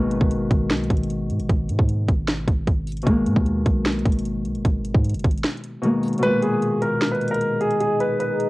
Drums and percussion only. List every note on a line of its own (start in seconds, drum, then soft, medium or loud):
0.11 closed hi-hat medium
0.21 kick loud
0.31 closed hi-hat medium
0.51 kick loud
0.51 closed hi-hat medium
0.70 snare loud
0.70 closed hi-hat soft
0.77 closed hi-hat medium
0.83 closed hi-hat medium
0.90 kick loud
0.90 closed hi-hat medium
0.97 closed hi-hat medium
1.03 closed hi-hat medium
1.10 closed hi-hat medium
1.30 closed hi-hat medium
1.39 closed hi-hat medium
1.49 kick loud
1.49 closed hi-hat medium
1.69 closed hi-hat medium
1.79 kick loud
1.89 closed hi-hat medium
2.08 kick loud
2.08 closed hi-hat medium
2.28 snare loud
2.28 closed hi-hat medium
2.48 kick loud
2.48 closed hi-hat medium
2.68 kick loud
2.68 closed hi-hat medium
2.87 closed hi-hat medium
2.87 open hi-hat medium
2.92 closed hi-hat medium
2.97 closed hi-hat medium
3.02 closed hi-hat medium
3.07 kick loud
3.07 closed hi-hat medium
3.27 closed hi-hat medium
3.37 kick loud
3.46 closed hi-hat medium
3.66 kick loud
3.66 closed hi-hat medium
3.86 snare loud
3.86 closed hi-hat soft
3.93 closed hi-hat medium
3.99 closed hi-hat medium
4.06 kick loud
4.06 closed hi-hat medium
4.12 closed hi-hat medium
4.19 closed hi-hat medium
4.25 closed hi-hat medium
4.45 closed hi-hat medium
4.55 closed hi-hat medium
4.65 kick loud
4.65 closed hi-hat medium
4.85 closed hi-hat medium
4.94 kick loud
5.04 closed hi-hat medium
5.09 closed hi-hat medium
5.14 closed hi-hat medium
5.19 closed hi-hat medium
5.24 kick loud
5.24 closed hi-hat medium
5.31 closed hi-hat medium
5.37 closed hi-hat medium
5.44 snare loud
5.44 closed hi-hat medium
5.51 closed hi-hat soft
5.57 closed hi-hat soft
5.64 closed hi-hat medium
5.83 closed hi-hat medium
6.03 closed hi-hat soft
6.03 open hi-hat medium
6.08 closed hi-hat medium
6.13 closed hi-hat medium
6.18 closed hi-hat medium
6.23 closed hi-hat medium
6.43 closed hi-hat medium
6.62 closed hi-hat medium
6.82 closed hi-hat medium
7.02 snare loud
7.02 closed hi-hat soft
7.08 closed hi-hat medium
7.15 closed hi-hat medium
7.21 closed hi-hat medium
7.28 closed hi-hat medium
7.35 closed hi-hat medium
7.41 closed hi-hat medium
7.61 closed hi-hat medium
7.71 closed hi-hat medium
7.81 closed hi-hat medium
8.00 closed hi-hat medium
8.20 closed hi-hat medium
8.40 closed hi-hat medium